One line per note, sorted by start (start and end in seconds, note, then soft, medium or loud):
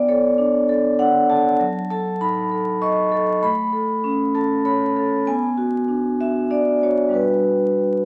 0.00 1.57 B3 medium
0.00 1.63 D5 medium
0.09 0.57 A4 medium
0.09 0.99 C#5 medium
0.38 0.87 D4 medium
0.69 1.18 A4 medium
0.99 1.48 D4 medium
0.99 1.30 F#5 loud
1.30 1.61 A4 medium
1.30 1.89 A5 loud
1.60 3.38 F#3 medium
1.90 2.40 A4 medium
1.90 2.21 A5 loud
2.21 2.70 D#4 medium
2.21 2.82 B5 loud
2.51 3.00 A4 medium
2.82 3.30 D#5 medium
2.82 3.42 C#6 loud
3.12 3.42 A4 medium
3.42 5.22 A3 medium
3.42 4.34 B5 loud
3.73 4.22 A4 medium
4.04 4.53 C#4 medium
4.35 4.84 A4 medium
4.35 4.65 A5 loud
4.65 5.14 C#5 medium
4.65 4.96 B5 loud
4.97 5.27 A4 medium
5.27 7.11 B3 medium
5.27 6.20 G#5 loud
5.58 6.07 F#4 medium
5.88 6.38 D4 medium
6.20 6.70 F#4 soft
6.20 6.51 E5 medium
6.50 7.02 D4 soft
6.50 6.83 D5 medium
6.83 7.11 F#4 medium
6.83 7.15 C#5 medium
7.09 8.05 G3 medium
7.09 8.05 D4 soft
7.09 8.05 F#4 soft
7.14 8.05 B4 medium